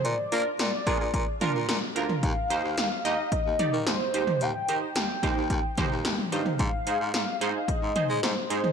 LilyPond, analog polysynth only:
\new Staff \with { instrumentName = "Analog polysynth" } { \time 4/4 \key ees \major \tempo 4 = 110 r8 <d' f' bes'>8 r8 <d' f' aes'>8 r8 <d' f' bes'>8 r8 <d' f' bes'>8 | r8 <ees' g' c''>8 r8 <ees' g' ees''>8 r8 <ees' g' d''>8 r8 <ees' g' c''>8 | r8 <ees' g' c''>8 r8 <ees' g' c''>8 r8 <ees' g' c''>8 r8 <ees' g' c''>8 | r8 <ees' aes' c''>8 r8 <ees' aes' c''>8 r8 <ees' aes' c''>8 r8 <ees' aes' c''>8 | }